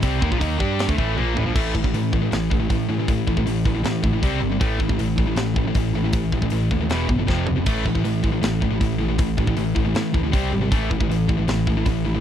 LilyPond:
<<
  \new Staff \with { instrumentName = "Distorted electric guitar" } { \clef bass \time 4/4 \key a \phrygian \tempo 4 = 157 <c g c'>8 <dis bes>16 <bes, f>16 <dis bes dis'>8 <g d' g'>8. <d a>16 <a, e a>8 <bes, f bes>8 <a, e>16 <bes, f>16 | <a, e a>8 <a, e>16 <a, e>16 <a, e>8 <a, e>16 <a, e>16 <a, e>8 <a, e>16 <a, e>16 <a, e>8 <a, e>16 <a, e>16 | <a, e>8 <a, e>16 <a, e>16 <a, e>8 <a, e>16 <a, e>16 <a, e>8 <a, e>16 <a, e>16 <c g c'>8 <c g>16 <c g>16 | <a, e a>8 <a, e>16 <a, e>16 <a, e>8 <a, e>16 <a, e>16 <a, e>8 <a, e>16 <a, e>16 <a, e>8 <a, e>16 <a, e>16 |
<a, e>8 <a, e>16 <a, e>16 <a, e>8 <a, e>16 <a, e>16 <e, b, e>8 <e, b,>16 <e, b,>16 <f, c f>8 <f, c>16 <f, c>16 | <a, e a>8 <a, e>16 <a, e>16 <a, e>8 <a, e>16 <a, e>16 <a, e>8 <a, e>16 <a, e>16 <a, e>8 <a, e>16 <a, e>16 | <a, e>8 <a, e>16 <a, e>16 <a, e>8 <a, e>16 <a, e>16 <a, e>8 <a, e>16 <a, e>16 <c g c'>8 <c g>16 <c g>16 | <a, e a>8 <a, e>16 <a, e>16 <a, e>8 <a, e>16 <a, e>16 <a, e>8 <a, e>16 <a, e>16 <a, e>8 <a, e>16 <a, e>16 | }
  \new Staff \with { instrumentName = "Distorted electric guitar" } { \clef bass \time 4/4 \key a \phrygian <c g c'>8 <dis bes>16 <bes, f>16 <dis bes dis'>8 <g d' g'>8. <d a>16 <a, e a>8 <bes, f bes>8 <a, e>16 <bes, f>16 | <a, e a>8 <a, e>16 <a, e>16 <a, e>8 <a, e>16 <a, e>16 <a, e>8 <a, e>16 <a, e>16 <a, e>8 <a, e>16 <a, e>16 | <a, e>8 <a, e>16 <a, e>16 <a, e>8 <a, e>16 <a, e>16 <a, e>8 <a, e>16 <a, e>16 <c g c'>8 <c g>16 <c g>16 | <a, e a>8 <a, e>16 <a, e>16 <a, e>8 <a, e>16 <a, e>16 <a, e>8 <a, e>16 <a, e>16 <a, e>8 <a, e>16 <a, e>16 |
<a, e>8 <a, e>16 <a, e>16 <a, e>8 <a, e>16 <a, e>16 <e, b, e>8 <e, b,>16 <e, b,>16 <f, c f>8 <f, c>16 <f, c>16 | <a, e a>8 <a, e>16 <a, e>16 <a, e>8 <a, e>16 <a, e>16 <a, e>8 <a, e>16 <a, e>16 <a, e>8 <a, e>16 <a, e>16 | <a, e>8 <a, e>16 <a, e>16 <a, e>8 <a, e>16 <a, e>16 <a, e>8 <a, e>16 <a, e>16 <c g c'>8 <c g>16 <c g>16 | <a, e a>8 <a, e>16 <a, e>16 <a, e>8 <a, e>16 <a, e>16 <a, e>8 <a, e>16 <a, e>16 <a, e>8 <a, e>16 <a, e>16 | }
  \new Staff \with { instrumentName = "Picked electric bass" } { \clef bass \time 4/4 \key a \phrygian c,8 dis,16 bes,,16 dis,8 g,8. d,16 a,,8 bes,,8 a,,16 bes,,16 | a,,8 a,,8 a,,4 a,,4 a,,8 a,,8 | a,,8 a,,8 a,,8 a,,8 a,8 a,,8 c,8 g,,8 | a,,8 a,,8 a,,4 a,,4 a,,8 a,,8 |
a,,8 a,,8 a,,8 dis,8 e,,8 g,,8 f,,8 f,,8 | a,,8 a,,8 a,,4 a,,4 a,,8 a,,8 | a,,8 a,,8 a,,8 a,,8 a,8 d,8 c,8 gis,,8 | a,,8 a,,8 a,,4 a,,4 a,,8 a,,8 | }
  \new DrumStaff \with { instrumentName = "Drums" } \drummode { \time 4/4 <hho bd>8 bd16 bd16 <hho bd>8 bd8 <hho sn>16 bd16 bd8 tommh8 tomfh8 | <cymc bd>8 bd16 bd16 hho8 bd8 <hho sn>8 bd8 <hho bd>4 | <hho bd>8 bd16 bd16 hho8 bd8 <hho sn>8 bd8 <hho bd>4 | <hho bd>8 bd16 bd16 hho8 bd8 <hho sn>8 bd8 <hho bd>4 |
<hho bd>8 bd16 bd16 hho8 bd8 <hho sn>8 bd8 <bd sn>8 tomfh8 | <cymc hho bd>8 bd16 bd16 hho8 bd8 <hho sn>8 bd8 <hho bd>4 | <hho bd>8 bd16 bd16 hho8 bd8 <hho sn>8 bd8 <hho bd>4 | <hho bd>8 bd16 bd16 hho8 bd8 <hho sn>8 bd8 <hho bd>4 | }
>>